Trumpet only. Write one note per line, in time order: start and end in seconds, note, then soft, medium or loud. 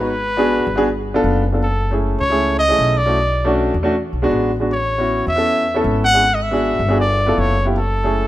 0.00 1.02 B4 medium
1.63 1.99 A4 medium
2.20 2.56 C#5 loud
2.59 2.99 D#5 loud
2.97 3.55 D5 medium
4.73 5.25 C#5 loud
5.28 5.81 E5 loud
6.04 6.36 F#5 loud
6.34 6.44 D#5 medium
6.43 7.00 E5 medium
7.00 7.41 D5 medium
7.39 7.67 C#5 medium
7.77 8.28 A4 medium